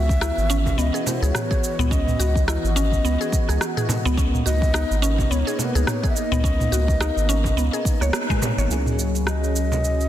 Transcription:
0.00 0.32 C#2 medium
0.00 4.14 E3 medium
0.00 8.66 B3 medium
0.00 4.14 F#4 medium
0.00 0.80 E5 loud
0.09 kick loud
0.09 shaker soft
0.21 0.37 E4 loud
0.21 cross-stick medium
0.21 shaker soft
0.37 0.74 G#1 medium
0.37 shaker soft
0.50 0.77 C#4 loud
0.50 shaker medium
0.66 kick medium
0.66 frame drum medium
0.66 shaker soft
0.78 0.91 C#2 medium
0.78 0.93 B3 medium
0.78 1.09 D#5 loud
0.78 shaker soft
0.94 1.21 G#4 medium
0.94 shaker soft
1.06 1.20 C5 medium
1.06 frame drum medium
1.06 shaker medium
1.20 1.32 C#2 medium
1.20 1.34 G#4 medium
1.20 1.93 C#5 medium
1.20 shaker soft
1.35 cross-stick medium
1.35 mid tom medium
1.35 shaker soft
1.51 1.58 G#4 medium
1.51 kick loud
1.51 shaker soft
1.64 shaker medium
1.79 2.15 C#2 medium
1.79 1.90 B3 medium
1.79 mid tom medium
1.79 shaker soft
1.91 2.07 C#4 medium
1.91 2.47 D#5 loud
1.91 kick loud
1.91 shaker soft
2.08 mid tom medium
2.08 shaker soft
2.19 2.58 C#2 medium
2.19 2.35 F#4 medium
2.19 shaker medium
2.36 kick loud
2.36 shaker soft
2.48 2.63 E4 loud
2.48 3.57 D#5 medium
2.48 cross-stick medium
2.48 shaker soft
2.64 3.00 G#1 medium
2.64 shaker soft
2.76 3.03 C#4 loud
2.76 shaker medium
2.92 kick medium
2.92 shaker soft
3.04 3.17 C#2 medium
3.04 3.20 B3 medium
3.04 shaker soft
3.21 3.47 G#4 medium
3.21 shaker soft
3.33 kick loud
3.33 shaker medium
3.49 3.58 C#2 medium
3.49 3.60 G#4 medium
3.49 cross-stick soft
3.49 shaker soft
3.61 cross-stick medium
3.61 shaker soft
3.77 3.84 G#4 medium
3.77 mid tom medium
3.77 shaker soft
3.89 mid tom medium
3.89 frame drum medium
3.89 shaker medium
4.05 4.42 C#2 medium
4.05 4.16 B3 loud
4.05 shaker soft
4.17 8.67 A#3 medium
4.17 4.33 C#4 medium
4.17 8.67 D#4 medium
4.17 kick loud
4.17 shaker soft
4.34 mid tom medium
4.34 shaker soft
4.46 4.85 C#2 loud
4.46 4.61 F#4 medium
4.46 5.32 D#5 loud
4.46 shaker medium
4.62 kick loud
4.62 shaker soft
4.74 4.89 D#4 loud
4.74 cross-stick medium
4.74 shaker soft
4.91 5.27 G#1 medium
4.91 shaker soft
5.02 5.29 C#4 loud
5.02 shaker medium
5.18 kick medium
5.18 frame drum medium
5.18 shaker soft
5.31 5.43 C#2 medium
5.31 5.46 B3 medium
5.31 5.61 C#5 loud
5.31 shaker soft
5.47 5.74 G#4 medium
5.47 shaker soft
5.59 5.89 B4 medium
5.59 frame drum medium
5.59 shaker medium
5.75 5.85 C#2 medium
5.75 5.87 G#4 medium
5.75 shaker soft
5.87 6.08 C#5 medium
5.87 cross-stick medium
5.87 mid tom medium
5.87 shaker soft
6.03 6.10 G#4 medium
6.03 kick medium
6.03 shaker soft
6.09 6.17 E5 medium
6.16 8.14 D#5 loud
6.16 shaker medium
6.32 6.68 C#2 medium
6.32 6.43 B3 medium
6.32 mid tom medium
6.32 shaker soft
6.44 6.59 C#4 medium
6.44 kick loud
6.44 shaker soft
6.60 mid tom medium
6.60 shaker soft
6.72 7.11 C#2 loud
6.72 6.88 F#4 medium
6.72 shaker medium
6.88 kick loud
6.88 shaker soft
7.00 7.16 D#4 medium
7.00 cross-stick loud
7.00 shaker soft
7.16 7.53 G#1 loud
7.16 shaker soft
7.29 7.56 C#4 loud
7.29 shaker medium
7.44 kick medium
7.44 frame drum medium
7.44 shaker soft
7.57 7.70 C#2 medium
7.57 7.73 B3 medium
7.57 shaker soft
7.73 7.84 G#4 medium
7.73 shaker soft
7.85 kick loud
7.85 shaker medium
8.01 8.11 C#2 medium
8.01 8.13 C#5 medium
8.01 cross-stick soft
8.01 shaker soft
8.13 cross-stick loud
8.13 shaker soft
8.30 8.42 G#3 loud
8.30 kick medium
8.30 mid tom medium
8.30 shaker soft
8.42 mid tom medium
8.42 frame drum medium
8.42 shaker medium
8.58 8.67 G#1 medium
8.58 8.70 C#5 medium
8.58 shaker soft
8.68 10.09 C#2 medium
8.68 10.08 F#3 medium
8.68 10.09 F#3 medium
8.68 10.08 A#3 medium
8.68 10.09 C#4 medium
8.68 10.09 E4 medium
8.68 10.09 G#4 medium
8.68 shaker soft
8.72 10.09 G#4 medium
8.86 mid tom medium
8.86 shaker soft
8.99 shaker medium
9.16 shaker soft
9.27 10.09 D#5 loud
9.27 cross-stick medium
9.27 shaker soft
9.44 shaker soft
9.56 shaker medium
9.72 frame drum medium
9.72 shaker soft
9.85 shaker soft
10.01 shaker soft

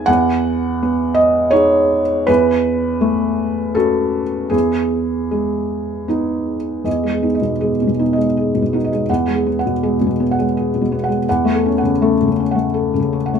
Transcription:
0.00 0.10 B3 medium
0.00 0.10 G#5 medium
0.06 2.24 E2 medium
0.06 1.17 F#5 loud
0.83 1.99 B3 soft
1.14 1.53 D#5 medium
1.51 2.23 D#4 soft
1.51 2.23 G#4 medium
1.51 2.26 C#5 medium
2.27 4.49 E2 medium
2.27 3.75 B4 loud
3.01 4.21 A3 medium
3.75 4.49 C#4 soft
3.75 4.49 F#4 soft
3.75 4.52 A4 medium
4.50 6.81 E2 medium
4.50 6.07 G#4 medium
5.31 6.56 G#3 soft
6.08 6.82 B3 soft
6.08 6.82 D#4 soft
6.84 9.04 E2 soft
6.84 7.25 D#5 soft
7.03 7.34 G#3 soft
7.12 7.51 G#4 soft
7.23 7.40 B3 soft
7.23 7.40 D#4 soft
7.35 7.75 D#5 soft
7.41 7.71 B2 soft
7.61 7.91 G#3 soft
7.61 8.00 G#4 soft
7.82 7.86 B2 soft
7.87 8.26 B2 soft
7.99 8.15 B3 soft
7.99 8.15 D#4 soft
8.13 8.51 D#5 soft
8.18 8.76 G#3 soft
8.37 8.75 G#4 soft
8.54 8.61 B2 soft
8.62 9.00 B2 soft
8.73 8.89 B3 soft
8.73 8.89 D#4 soft
8.85 9.09 D#5 soft
8.92 9.10 G#3 soft
9.10 11.23 E2 soft
9.10 9.48 F#5 soft
9.27 9.57 G#3 soft
9.33 9.72 G#4 soft
9.46 9.62 B3 soft
9.59 9.97 F#5 soft
9.66 9.94 B2 soft
9.83 10.11 G#3 soft
9.83 10.21 G#4 soft
10.01 10.05 B2 soft
10.07 10.45 B2 soft
10.20 10.35 B3 soft
10.31 10.69 F#5 soft
10.39 10.95 G#3 soft
10.57 10.94 G#4 soft
10.75 10.80 B2 soft
10.81 11.18 B2 soft
10.92 11.07 B3 soft
11.04 11.27 F#5 soft
11.09 11.26 G#3 soft
11.29 13.39 E2 medium
11.29 11.66 F#5 medium
11.45 11.74 A3 soft
11.54 11.91 A4 soft
11.66 11.81 C#4 soft
11.78 12.16 F#5 soft
11.84 12.12 C#3 soft
12.02 12.30 A3 soft
12.02 12.40 A4 soft
12.22 12.26 C#3 soft
12.28 12.66 C#3 soft
12.40 12.55 C#4 soft
12.51 13.16 A3 soft
12.51 12.90 F#5 soft
12.74 13.14 A4 soft
12.94 12.98 C#3 soft
13.00 13.39 C#3 soft
13.13 13.29 C#4 soft
13.26 13.39 F#5 soft
13.33 13.39 A3 soft

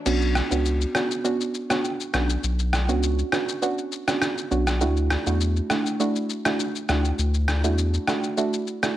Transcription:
0.06 0.41 B1 loud
0.06 0.47 B3 medium
0.06 0.47 C#4 medium
0.06 0.48 D4 medium
0.06 0.48 F#4 loud
0.06 crash medium
0.06 shaker medium
0.21 shaker soft
0.35 cross-stick loud
0.35 shaker medium
0.51 0.85 C#2 medium
0.51 0.91 B3 medium
0.51 0.92 C#4 medium
0.51 0.92 D4 medium
0.51 0.92 F#4 medium
0.51 shaker medium
0.65 shaker medium
0.81 shaker soft
0.95 1.22 B3 medium
0.95 1.22 C#4 medium
0.95 1.22 D4 medium
0.95 1.23 F#4 medium
0.95 cross-stick medium
0.95 shaker medium
1.11 shaker medium
1.24 1.41 B3 medium
1.24 1.41 C#4 medium
1.24 1.41 D4 medium
1.24 1.41 F#4 loud
1.24 shaker medium
1.41 shaker medium
1.54 shaker medium
1.70 1.85 B3 medium
1.70 1.85 C#4 medium
1.70 1.85 D4 medium
1.70 1.85 F#4 medium
1.70 cross-stick loud
1.70 shaker medium
1.84 shaker medium
2.00 shaker medium
2.13 2.37 B1 medium
2.13 2.30 B3 medium
2.13 2.30 C#4 medium
2.13 2.30 D4 medium
2.13 2.30 F#4 medium
2.13 cross-stick medium
2.13 shaker medium
2.30 shaker medium
2.44 2.90 B1 loud
2.44 shaker medium
2.59 shaker soft
2.73 cross-stick loud
2.73 shaker medium
2.89 3.23 C#2 medium
2.89 3.29 B3 medium
2.89 3.29 C#4 medium
2.89 3.29 D4 medium
2.89 3.29 F#4 medium
2.89 shaker medium
3.03 shaker medium
3.19 shaker soft
3.32 3.60 B3 medium
3.32 3.60 C#4 medium
3.32 3.60 D4 medium
3.32 3.60 F#4 medium
3.32 cross-stick medium
3.32 shaker medium
3.48 shaker medium
3.62 3.78 B3 medium
3.62 3.79 C#4 medium
3.62 3.79 D4 medium
3.62 3.79 F#4 loud
3.62 shaker medium
3.78 shaker medium
3.92 shaker medium
4.07 4.22 B3 medium
4.07 4.22 C#4 medium
4.07 4.22 D4 medium
4.07 4.22 F#4 medium
4.07 cross-stick loud
4.07 shaker medium
4.22 cross-stick medium
4.22 shaker medium
4.38 shaker medium
4.51 4.83 B1 medium
4.51 4.67 B3 medium
4.51 4.68 C#4 medium
4.51 4.68 D4 medium
4.51 4.68 F#4 medium
4.51 shaker medium
4.67 cross-stick loud
4.67 shaker medium
4.81 5.17 D2 loud
4.81 5.23 A3 medium
4.81 5.23 D4 medium
4.81 5.23 E4 medium
4.81 5.23 F#4 medium
4.81 shaker medium
4.97 shaker soft
5.10 cross-stick loud
5.10 shaker medium
5.26 5.61 E2 medium
5.26 5.67 A3 medium
5.26 5.67 D4 medium
5.26 5.67 E4 medium
5.26 5.67 F#4 medium
5.26 shaker medium
5.41 shaker medium
5.56 shaker soft
5.70 5.97 A3 medium
5.70 5.98 D4 medium
5.70 5.98 E4 medium
5.70 5.98 F#4 medium
5.70 cross-stick medium
5.70 shaker medium
5.86 shaker medium
6.00 6.16 A3 medium
6.00 6.16 D4 medium
6.00 6.16 E4 medium
6.00 6.16 F#4 loud
6.00 shaker medium
6.16 shaker medium
6.29 shaker medium
6.45 6.60 A3 medium
6.45 6.60 D4 medium
6.45 6.60 E4 medium
6.45 6.60 F#4 medium
6.45 cross-stick loud
6.45 shaker medium
6.60 shaker medium
6.75 shaker medium
6.89 7.12 D2 medium
6.89 7.05 A3 medium
6.89 7.05 D4 medium
6.89 7.05 E4 medium
6.89 7.06 F#4 medium
6.89 cross-stick loud
6.89 shaker medium
7.05 shaker medium
7.19 7.66 D2 loud
7.19 shaker medium
7.34 shaker soft
7.48 cross-stick loud
7.48 shaker medium
7.64 7.98 E2 medium
7.64 8.04 A3 medium
7.64 8.04 D4 medium
7.64 8.04 E4 medium
7.64 8.05 F#4 medium
7.64 shaker medium
7.78 shaker medium
7.94 shaker soft
8.07 8.35 A3 medium
8.07 8.35 D4 medium
8.07 8.35 E4 medium
8.07 8.36 F#4 medium
8.07 cross-stick medium
8.07 shaker medium
8.23 shaker medium
8.37 8.54 A3 medium
8.37 8.54 D4 medium
8.37 8.54 E4 medium
8.37 8.54 F#4 loud
8.37 shaker medium
8.53 shaker medium
8.67 shaker medium
8.83 8.97 A3 medium
8.83 8.97 D4 medium
8.83 8.97 E4 medium
8.83 8.97 F#4 medium
8.83 cross-stick loud
8.83 shaker medium

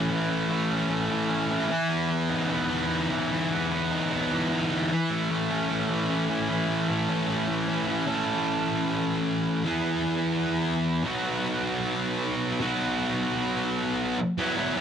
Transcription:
0.00 0.10 E3 medium
0.00 0.28 A3 medium
0.00 0.69 C#4 medium
0.10 1.10 E3 medium
0.30 0.49 A3 medium
0.50 0.89 A3 medium
0.71 1.28 C#4 medium
0.90 1.70 A3 medium
1.11 1.51 E3 medium
1.30 1.70 C#4 medium
1.51 1.69 E3 medium
1.70 2.70 E3 medium
1.89 2.08 B3 medium
2.09 2.49 B3 medium
2.30 2.89 D#4 medium
2.50 3.50 B3 medium
2.70 3.10 E3 medium
2.90 3.90 D#4 medium
3.11 3.31 E3 medium
3.31 4.31 E3 medium
3.51 3.70 B3 medium
3.71 4.09 B3 medium
3.91 4.50 D#4 medium
4.11 4.90 B3 medium
4.31 4.69 E3 medium
4.51 4.91 D#4 medium
4.70 4.91 E3 medium
4.91 5.89 E3 medium
5.11 5.30 A3 medium
5.31 5.70 A3 medium
5.50 6.09 C#4 medium
5.70 6.68 A3 medium
5.89 6.28 E3 medium
6.09 7.08 C#4 medium
6.29 6.48 E3 medium
6.49 7.47 E3 medium
6.69 6.88 A3 medium
6.89 7.27 A3 medium
7.09 7.66 C#4 medium
7.28 8.06 A3 medium
7.48 7.87 E3 medium
7.68 8.07 C#4 medium
7.88 8.05 E3 medium
8.06 9.63 E3 medium
8.06 9.64 A3 medium
8.06 9.65 C#4 medium
8.06 9.66 A4 loud
9.64 11.02 E3 medium
9.64 11.04 B3 medium
9.64 11.03 E4 medium
9.64 11.03 G#4 medium
11.04 12.60 F#3 medium
11.04 12.61 B3 medium
11.04 12.61 D#4 medium
11.04 12.62 F#4 loud
12.60 14.17 F#3 medium
12.60 14.17 B3 medium
12.60 14.18 D#4 medium
12.60 14.18 F#4 medium
14.38 14.57 F#3 loud
14.38 14.56 B3 loud
14.38 14.57 E4 loud
14.57 14.76 F#3 medium
14.57 14.76 B3 medium
14.57 14.76 E4 medium
14.76 14.81 F#3 medium
14.76 14.81 B3 loud
14.76 14.81 E4 loud

